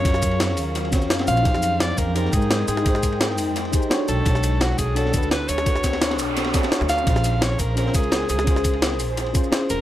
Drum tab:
RD |x-xxx-x-xxx-xx-x|xxx-x-x-x-x-x-x-|x-xxx-x-xxx-x-x-|xxx-x-x-x-x-x-x-|
HH |x-x-x-o-x-x-x-x-|x-x-x-x-x-x-x-x-|x-x-x-o-x-x-x-x-|x-x-x-x-x-x-x-x-|
SH |--x---x---xx--xx|--x---x---xx--x-|--x---x---xx--x-|--x---x---xx--x-|
SD |-o--oo----ooooo-|-o--oo---o--oo-o|-o--oo------o---|-o--oo---o--oo-o|
BD |o-o-------o-----|o-----o---o-----|o-o-------o-----|o-----o---o-----|

RD |x-xxxxx-xxxx--x-|xxx-x-x-x-x-x-x-|x-xxx-x-xxx-x-x-|
HH |x-x-x-o-x-x-x-x-|x-x-x-x-x-x-x-x-|x-x-x-o-x-x-x-x-|
SH |--x---x---xx--xx|--x---x---xx--x-|--x---x---xx--x-|
SD |-ooooo--ooooooo-|-o--oo---o--oo-o|-o--oo------o---|
BD |o-o-------o-----|o-----o---o-----|o-o-------o-----|